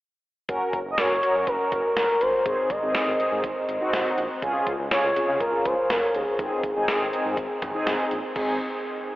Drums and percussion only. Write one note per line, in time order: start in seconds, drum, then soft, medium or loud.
0.49 kick loud
0.49 closed hi-hat medium
0.73 kick medium
0.73 closed hi-hat medium
0.98 snare loud
0.98 closed hi-hat medium
1.23 closed hi-hat medium
1.47 kick medium
1.47 closed hi-hat medium
1.72 kick medium
1.72 closed hi-hat medium
1.97 snare loud
1.97 closed hi-hat medium
2.21 closed hi-hat medium
2.46 kick loud
2.46 closed hi-hat medium
2.70 kick medium
2.70 closed hi-hat medium
2.95 snare loud
2.95 closed hi-hat medium
3.20 closed hi-hat medium
3.44 kick medium
3.44 closed hi-hat medium
3.69 closed hi-hat medium
3.93 snare loud
3.93 closed hi-hat medium
4.18 closed hi-hat medium
4.42 kick loud
4.42 closed hi-hat medium
4.67 kick medium
4.67 closed hi-hat medium
4.91 snare loud
4.91 closed hi-hat medium
5.16 closed hi-hat medium
5.40 kick medium
5.40 closed hi-hat medium
5.65 kick medium
5.65 closed hi-hat medium
5.90 snare loud
5.90 closed hi-hat medium
6.14 closed hi-hat medium
6.39 kick loud
6.39 closed hi-hat medium
6.63 kick medium
6.63 closed hi-hat medium
6.88 snare loud
6.88 closed hi-hat medium
7.13 closed hi-hat medium
7.37 kick medium
7.37 closed hi-hat medium
7.62 kick medium
7.62 closed hi-hat medium
7.62 mid tom medium
7.87 snare loud
7.87 closed hi-hat medium
8.11 closed hi-hat medium
8.36 kick loud
8.36 crash medium